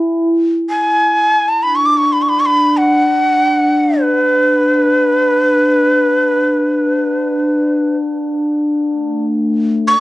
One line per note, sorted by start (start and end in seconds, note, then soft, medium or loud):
0.00 0.28 E4 medium
0.69 1.50 G#5 medium
1.48 1.64 A5 medium
1.60 9.25 D4 medium
1.60 1.77 B5 medium
1.76 1.87 C#6 medium
1.86 1.99 D6 medium
1.98 2.14 C#6 medium
2.13 2.23 B5 medium
2.22 2.30 C#6 medium
2.29 2.41 B5 medium
2.40 2.47 C#6 medium
2.46 2.79 B5 medium
2.77 4.02 F#5 medium
4.01 7.96 B4 medium
8.87 10.00 A3 soft
9.88 10.00 C#6 medium